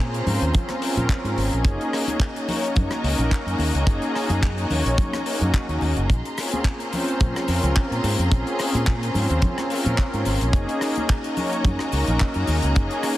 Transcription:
Already playing: A#2 A#3 G#4 A#5 C6
0.13 C4 C#4 F4 C5, closed hi-hat
0.26 G#2, open hi-hat, low conga
0.41 D#2, closed hi-hat
0.53 C4 C#4 F4 G#4, kick, closed hi-hat, low conga
0.69 cross-stick, closed hi-hat, high conga
0.81 C4 C#4 F4 A#4, open hi-hat
0.97 A#2, closed hi-hat, low conga
1.09 kick, clap, closed hi-hat
1.24 G#2 C4 C#4 F4 G#4, closed hi-hat
1.36 G#1, open hi-hat, high conga
1.51 A#1 A#3 C#4 D#4 G#4, closed hi-hat
1.64 F#4 D#5 G#5 A#5, kick, closed hi-hat
1.81 closed hi-hat
1.92 A#3 C#4 D#4 G#4, cross-stick, open hi-hat
2.08 closed hi-hat, high conga
2.20 kick, clap, closed hi-hat
2.35 A#3 C#4 D#4 C#5, closed hi-hat
2.48 open hi-hat, low conga
2.64 closed hi-hat
2.75 F#2 A#3 C#4 D#4 G#4, kick, closed hi-hat, low conga
2.90 cross-stick, closed hi-hat, high conga
3.03 C#2 A#3 C#4 D#4 A#4, open hi-hat
3.18 A#1, closed hi-hat, low conga
3.31 kick, clap, closed hi-hat
3.46 F#2 A#3 C#4 D#4 G#4, closed hi-hat
3.59 D#2, open hi-hat, high conga
3.74 C#2 A#3 C#4 D#4 G#4, closed hi-hat
3.87 F#1, kick, closed hi-hat
4.02 closed hi-hat
4.14 A#3 C#4 D#4 G#4, cross-stick, open hi-hat
4.29 F#2, closed hi-hat, high conga
4.43 kick, clap, closed hi-hat
4.57 A#3 C#4 D#4 C#5, closed hi-hat
4.70 D#2, open hi-hat, low conga
4.85 A#1, closed hi-hat
4.98 A#3 C#4 D#4 G#4, kick, closed hi-hat, low conga
5.13 cross-stick, closed hi-hat, high conga
5.26 A#3 C#4 D#4 F#4, open hi-hat
5.41 F#2, closed hi-hat, low conga
5.54 kick, clap, closed hi-hat
5.69 D#2 A#3 C#4 D#4 G#4, closed hi-hat
5.81 D#2, open hi-hat, high conga
5.96 F#1, closed hi-hat
6.09 A#1 A#3 G#4 A#5 C6, kick, closed hi-hat, cabasa
6.25 closed hi-hat
6.37 C4 C#4 F4 G#4, cross-stick, open hi-hat, cabasa
6.51 closed hi-hat, high conga, cabasa
6.64 kick, clap, closed hi-hat, cabasa
6.80 C4 C#4 F4 C5, closed hi-hat
6.93 open hi-hat, low conga, cabasa
7.07 closed hi-hat, cabasa
7.20 A#2 C4 C#4 F4 G#4, kick, closed hi-hat, low conga, cabasa
7.35 cross-stick, closed hi-hat, high conga
7.48 F2 C4 C#4 F4 A#4, open hi-hat, cabasa
7.63 C#2, closed hi-hat, low conga, cabasa
7.76 kick, clap, closed hi-hat
7.91 A#2 C4 C#4 F4 G#4, closed hi-hat
8.04 G#2, open hi-hat, high conga, cabasa
8.18 F2 C4 C#4 F4 G#4, closed hi-hat, cabasa
8.31 A#1, kick, closed hi-hat, cabasa
8.47 closed hi-hat
8.59 C4 C#4 F4 G#4, cross-stick, open hi-hat, cabasa
8.74 A#2, closed hi-hat, high conga, cabasa
8.87 kick, clap, closed hi-hat
9.01 C4 C#4 F4 C5, closed hi-hat
9.14 G#2, open hi-hat, low conga, cabasa
9.30 D#2, closed hi-hat, cabasa
9.42 C4 C#4 F4 G#4, kick, closed hi-hat, low conga, cabasa
9.58 cross-stick, closed hi-hat, high conga
9.69 C4 C#4 F4 A#4, open hi-hat, cabasa
9.86 A#2, closed hi-hat, low conga, cabasa
9.98 kick, clap, closed hi-hat
10.13 G#2 C4 C#4 F4 G#4, closed hi-hat
10.25 G#1, open hi-hat, high conga, cabasa
10.41 A#1 A#3 C#4 D#4 G#4, closed hi-hat, cabasa
10.53 F#1 F#4 D#5 G#5 A#5, kick, closed hi-hat, cabasa
10.69 closed hi-hat
10.81 A#3 C#4 D#4 G#4, cross-stick, open hi-hat, cabasa
10.96 closed hi-hat, high conga, cabasa
11.09 kick, clap, closed hi-hat
11.24 A#3 C#4 D#4 C#5, closed hi-hat
11.37 open hi-hat, low conga, cabasa
11.52 closed hi-hat, cabasa
11.64 F#2 A#3 C#4 D#4 G#4, kick, closed hi-hat, low conga, cabasa
11.79 cross-stick, closed hi-hat, high conga
11.92 C#2 A#3 C#4 D#4 A#4, open hi-hat, cabasa
12.07 A#1, closed hi-hat, low conga, cabasa
12.20 kick, clap, closed hi-hat
12.34 F#2 A#3 C#4 D#4 G#4, closed hi-hat
12.47 D#2, open hi-hat, high conga, cabasa
12.62 C#2 A#3 C#4 D#4 G#4, closed hi-hat, cabasa
12.76 F#1, kick, closed hi-hat, cabasa
12.91 closed hi-hat
13.03 A#3 C#4 D#4 G#4, cross-stick, open hi-hat, cabasa

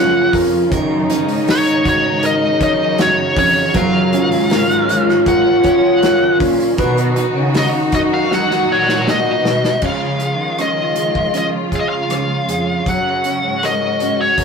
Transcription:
Already playing: F#2 C#3 F3 A#3 C#4 F4 A#4 F#5
0.33 F2 A#4, kick, hi-hat pedal, open hi-hat
0.72 F#2 D#3 D#4 A#4, kick, hi-hat pedal, open hi-hat
1.10 C#4 D#4, hi-hat pedal, open hi-hat
1.28 G#2, open hi-hat
1.47 D#4 A#4, snare, hi-hat pedal, open hi-hat
1.51 C#5
1.67 hi-hat pedal
1.85 F#4 C#5, kick, hi-hat pedal, open hi-hat
2.23 A#4 D#5, hi-hat pedal, open hi-hat
2.60 F#2 C#4 D#4 D#5, kick, hi-hat pedal, open hi-hat
2.98 F#4 C#5, snare, hi-hat pedal, open hi-hat
3.36 F2 C#4 C#5, kick, hi-hat pedal, open hi-hat
3.67 F#4
3.73 F#2 F#3 C#4 F4 A#4, kick, hi-hat pedal, open hi-hat
3.77 F5
4.13 C#4, hi-hat pedal, open hi-hat
4.31 G#2, open hi-hat
4.50 A#4, snare, hi-hat pedal, open hi-hat
4.70 hi-hat pedal
4.89 C#5, hi-hat pedal, open hi-hat
5.09 snare
5.26 A#4 F#5, kick, hi-hat pedal, open hi-hat
5.64 F#2 C#4 C#5, kick, hi-hat pedal, open hi-hat
6.03 A#4, snare, hi-hat pedal, open hi-hat
6.40 A#2 C#4, kick, hi-hat pedal, open hi-hat
6.60 open hi-hat
6.77 B2 D#3 D#4 F#4 A#4 B4, kick, hi-hat pedal, open hi-hat
6.97 hi-hat pedal
7.16 D#4 F#4, hi-hat pedal, open hi-hat
7.35 C#3
7.54 D#4 A#4 D#5, snare, hi-hat pedal, open hi-hat
7.92 F#2 F#4 D#5, kick, hi-hat pedal, open hi-hat
8.14 F5
8.31 F#3 F#5, snare
8.51 snare
8.68 A#2 F#4
8.72 C#5
8.89 snare
9.07 B3 D#4 D#5, snare
9.44 B2 F#4, snare
9.64 snare
9.82 C#3 F3 G#3 C#4 F4, kick, crash
9.86 F5
10.20 G#4, closed hi-hat
10.38 D#3
10.58 C#4 D#5, cross-stick, closed hi-hat
10.96 G#4, closed hi-hat
11.15 kick
11.34 C#4 D#5, closed hi-hat
11.72 C#3 G#4, kick, closed hi-hat
11.76 F5
11.80 D#5
11.89 F5
12.10 C#4, cross-stick, closed hi-hat
12.48 F2 G#4, closed hi-hat
12.86 F#2 F#3 C#4 F#4 F#5, kick, closed hi-hat
13.24 C#4, closed hi-hat
13.44 G#2
13.63 A#4 D#5, cross-stick, closed hi-hat
14.00 C#4, closed hi-hat
14.21 C#5
14.38 A#4, kick, closed hi-hat

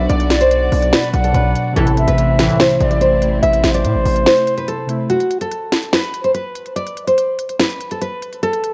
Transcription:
Already playing: B2 F#3 D4 F#4 D5
0.09 B1 D5, closed hi-hat
0.20 closed hi-hat
0.30 D5, snare, closed hi-hat
0.41 C5, closed hi-hat
0.51 closed hi-hat
0.72 B1, open hi-hat
0.83 closed hi-hat
0.93 B4, snare, closed hi-hat
1.03 closed hi-hat
1.14 B1 F#5, closed hi-hat
1.24 A4, closed hi-hat
1.33 B1 B2 F#3 D4 B4, closed hi-hat
1.55 closed hi-hat
1.73 A1 C2 A2 C3 E3 A3 C4 E4 A4, closed hi-hat
1.80 E4
1.87 closed hi-hat
1.97 E5, closed hi-hat
2.08 A1 B4, closed hi-hat
2.18 closed hi-hat
2.39 C2 A2 E3, snare, closed hi-hat
2.49 closed hi-hat
2.60 C5, snare, closed hi-hat
2.70 closed hi-hat
2.80 A1 D5, closed hi-hat
2.91 D5, closed hi-hat
3.01 C5, closed hi-hat
3.22 closed hi-hat
3.43 A1 E5, closed hi-hat
3.53 closed hi-hat
3.64 A1 C5, snare, closed hi-hat
3.74 D5, closed hi-hat
3.85 A2, closed hi-hat
3.95 A1
4.05 A1, open hi-hat
4.16 closed hi-hat
4.26 C5, snare, closed hi-hat
4.37 closed hi-hat
4.47 closed hi-hat
4.57 B4, closed hi-hat
4.68 A4, closed hi-hat
4.86 C3 A3 E4, closed hi-hat
5.09 F#4, closed hi-hat
5.20 closed hi-hat
5.30 closed hi-hat
5.41 A4, closed hi-hat
5.51 closed hi-hat
5.72 snare, closed hi-hat
5.82 closed hi-hat
5.93 B4, snare, closed hi-hat
6.03 closed hi-hat
6.14 closed hi-hat
6.24 C5, closed hi-hat
6.34 B4, closed hi-hat
6.55 closed hi-hat
6.66 closed hi-hat
6.76 D5, closed hi-hat
6.87 closed hi-hat
6.97 closed hi-hat
7.07 C5, closed hi-hat
7.18 closed hi-hat
7.39 closed hi-hat
7.49 closed hi-hat
7.60 B4, snare, closed hi-hat
7.70 closed hi-hat
7.81 closed hi-hat
7.91 A4, closed hi-hat
8.01 B4, closed hi-hat
8.22 closed hi-hat
8.33 closed hi-hat
8.43 A4, closed hi-hat
8.53 closed hi-hat
8.64 closed hi-hat

